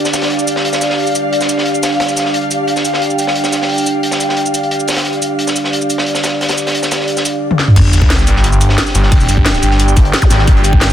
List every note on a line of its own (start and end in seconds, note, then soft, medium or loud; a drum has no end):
0.00 7.72 D4 medium
0.00 7.42 G4 medium
0.00 7.72 G4 medium
0.00 2.33 D5 medium
0.00 7.42 D5 medium
0.00 7.42 F5 medium
0.05 snare soft
0.05 cabasa soft
0.13 snare loud
0.13 closed hi-hat medium
0.13 cabasa medium
0.21 snare loud
0.21 closed hi-hat medium
0.30 closed hi-hat medium
0.39 cabasa soft
0.47 closed hi-hat medium
0.47 cabasa medium
0.56 snare medium
0.65 closed hi-hat medium
0.73 snare soft
0.73 cabasa soft
0.81 snare soft
0.81 closed hi-hat medium
0.81 cabasa medium
0.90 snare soft
0.98 open hi-hat medium
1.07 cabasa soft
1.15 closed hi-hat medium
1.15 cabasa medium
1.33 closed hi-hat medium
1.41 snare soft
1.41 cabasa soft
1.49 closed hi-hat medium
1.49 cabasa medium
1.58 snare soft
1.66 closed hi-hat medium
1.75 cabasa soft
1.83 snare medium
1.83 closed hi-hat medium
1.83 cabasa medium
1.92 closed hi-hat soft
2.00 snare loud
2.00 closed hi-hat medium
2.09 cabasa soft
2.16 snare soft
2.16 closed hi-hat medium
2.16 cabasa medium
2.25 snare soft
2.34 5.04 G5 medium
2.34 closed hi-hat medium
2.41 closed hi-hat soft
2.51 closed hi-hat medium
2.51 cabasa medium
2.68 closed hi-hat medium
2.76 snare soft
2.76 cabasa soft
2.85 closed hi-hat medium
2.85 cabasa medium
2.93 snare soft
3.02 closed hi-hat medium
3.10 cabasa soft
3.19 closed hi-hat medium
3.19 cabasa medium
3.27 snare medium
3.35 closed hi-hat medium
3.44 snare soft
3.44 cabasa soft
3.52 snare soft
3.52 closed hi-hat medium
3.52 cabasa medium
3.62 snare soft
3.69 open hi-hat medium
3.78 cabasa soft
3.86 closed hi-hat medium
3.86 cabasa medium
4.03 closed hi-hat medium
4.11 snare soft
4.11 cabasa soft
4.20 closed hi-hat medium
4.20 cabasa medium
4.29 snare soft
4.37 closed hi-hat medium
4.46 cabasa soft
4.54 closed hi-hat medium
4.54 cabasa medium
4.63 closed hi-hat soft
4.71 closed hi-hat medium
4.80 cabasa soft
4.88 snare medium
4.88 closed hi-hat medium
4.88 cabasa medium
4.93 snare medium
4.93 closed hi-hat medium
4.96 snare loud
4.96 closed hi-hat medium
5.05 7.75 D5 medium
5.05 closed hi-hat medium
5.13 closed hi-hat soft
5.22 closed hi-hat medium
5.22 cabasa medium
5.39 closed hi-hat medium
5.47 snare soft
5.47 cabasa soft
5.56 closed hi-hat medium
5.56 cabasa medium
5.64 snare soft
5.73 closed hi-hat medium
5.81 cabasa soft
5.90 closed hi-hat medium
5.90 cabasa medium
5.98 snare medium
6.06 closed hi-hat medium
6.15 snare medium
6.15 cabasa soft
6.23 snare loud
6.23 closed hi-hat medium
6.23 cabasa medium
6.41 snare soft
6.41 closed hi-hat medium
6.48 snare medium
6.48 closed hi-hat medium
6.48 cabasa soft
6.58 cabasa medium
6.67 snare soft
6.67 closed hi-hat medium
6.75 closed hi-hat medium
6.83 snare soft
6.83 cabasa soft
6.91 snare loud
6.91 closed hi-hat medium
6.91 cabasa medium
7.00 snare soft
7.08 closed hi-hat medium
7.17 snare soft
7.17 cabasa soft
7.25 closed hi-hat medium
7.25 cabasa medium
7.51 high tom medium
7.59 snare medium
7.68 mid tom medium
7.76 8.26 G1 loud
7.76 10.93 D4 medium
7.76 10.93 G4 medium
7.76 10.93 G5 medium
7.76 kick loud
7.76 closed hi-hat loud
7.76 closed hi-hat medium
7.76 crash loud
7.76 sub drop medium
7.84 closed hi-hat soft
7.93 10.93 D5 medium
7.93 closed hi-hat medium
7.93 cabasa medium
8.02 kick loud
8.10 snare loud
8.10 closed hi-hat medium
8.10 closed hi-hat loud
8.19 snare soft
8.19 cabasa soft
8.26 8.77 G1 loud
8.26 10.93 G5 medium
8.26 closed hi-hat medium
8.26 cabasa medium
8.36 snare soft
8.44 closed hi-hat loud
8.44 closed hi-hat medium
8.53 cabasa soft
8.61 closed hi-hat medium
8.61 cabasa medium
8.69 snare medium
8.78 snare loud
8.78 closed hi-hat medium
8.78 closed hi-hat loud
8.86 snare medium
8.86 cabasa soft
8.94 9.27 G1 loud
8.94 snare soft
8.94 closed hi-hat medium
8.94 cabasa medium
9.03 snare medium
9.12 kick loud
9.12 closed hi-hat loud
9.12 open hi-hat medium
9.20 cabasa soft
9.29 9.61 G1 loud
9.29 closed hi-hat medium
9.29 cabasa medium
9.37 kick medium
9.45 snare loud
9.45 closed hi-hat loud
9.45 closed hi-hat medium
9.54 snare medium
9.54 cabasa soft
9.63 10.12 G1 loud
9.63 closed hi-hat medium
9.63 cabasa medium
9.71 snare soft
9.79 closed hi-hat medium
9.88 cabasa soft
9.97 kick loud
9.97 closed hi-hat medium
9.97 cabasa medium
10.05 closed hi-hat soft
10.13 snare loud
10.13 closed hi-hat loud
10.13 closed hi-hat medium
10.22 kick loud
10.22 zap medium
10.22 cabasa soft
10.30 10.46 G#1 loud
10.30 snare medium
10.30 snare soft
10.30 closed hi-hat medium
10.30 cabasa medium
10.39 snare medium
10.47 10.93 G1 loud
10.47 kick loud
10.47 closed hi-hat medium
10.57 closed hi-hat soft
10.64 closed hi-hat medium
10.64 cabasa medium
10.73 kick loud
10.81 snare loud
10.81 closed hi-hat medium
10.81 closed hi-hat loud
10.90 snare soft
10.90 cabasa soft